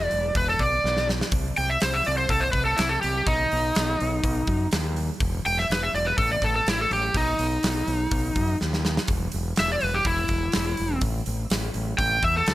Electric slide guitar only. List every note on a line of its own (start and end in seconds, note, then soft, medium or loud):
0.00 0.05 E5 loud
0.05 0.33 D5 loud
0.37 0.49 B4 medium
0.50 0.61 A4 medium
0.60 1.07 D5 medium
1.58 1.69 G5 medium
1.70 1.81 E5 medium
1.82 1.94 C5 medium
1.93 2.05 E5 medium
2.07 2.17 D5 medium
2.17 2.30 C5 medium
2.30 2.42 A4 medium
2.40 2.51 C5 medium
2.52 2.65 B4 medium
2.65 2.78 A4 medium
2.76 2.89 E4 medium
2.89 3.01 A4 medium
3.02 3.26 G4 medium
3.27 4.68 D#4 loud
5.46 5.57 G5 loud
5.59 5.70 E5 medium
5.72 5.82 B4 medium
5.83 5.94 E5 medium
5.95 6.06 D5 medium
6.07 6.18 B4 medium
6.18 6.30 A4 medium
6.32 6.42 D5 medium
6.44 6.55 A4 medium
6.56 6.67 A4 medium
6.69 6.79 E4 medium
6.81 6.91 A4 medium
6.93 7.15 G4 medium
7.17 8.57 D#4 loud
9.60 9.70 E5 medium
9.72 9.84 D5 medium
9.84 9.94 B4 medium
9.94 10.05 G4 medium
10.06 11.00 E4 loud
11.98 12.22 G5 loud
12.24 12.35 E5 loud
12.37 12.54 A4 medium